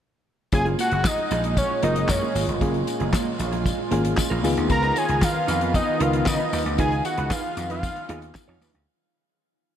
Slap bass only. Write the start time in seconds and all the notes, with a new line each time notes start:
0.53 F#1
0.92 F#1
1.31 A#1
1.83 F#1
2.09 F#2
2.35 G#1
2.48 G1
2.61 F#1
3.00 F#1
3.40 A#1
3.91 G#1
4.31 A#1
4.44 C#2
4.57 D2
4.70 C#2
5.09 C#2
5.48 F2
6.00 C#2
6.27 C#3
6.53 D#2
6.66 D2
6.79 C#2
7.18 C#2
7.57 F2
8.09 D#2
8.48 F2
8.61 D#2
8.74 D2